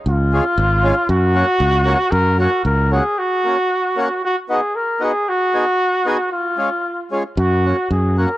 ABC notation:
X:1
M:2/4
L:1/8
Q:1/4=115
K:F#
V:1 name="Flugelhorn"
E4 | F4 | A F A G | F4 |
F G A G | F4 | E3 z | F2 G A |]
V:2 name="Accordion"
z [G,CE] z [G,CE] | z [A,CF] z [A,CF] | z [A,CF] z [A,CF] | z [A,CF] z [A,CF] |
z [B,DF] z [B,DF] | z [B,DG] z [B,DG] | z [G,CE] z [G,CE] | z [A,CF] z [A,CF] |]
V:3 name="Fingered electric bass" clef=bass
C,,2 G,,,2 | F,,2 C,,2 | F,,2 C,,2 | z4 |
z4 | z4 | z4 | F,,2 F,,2 |]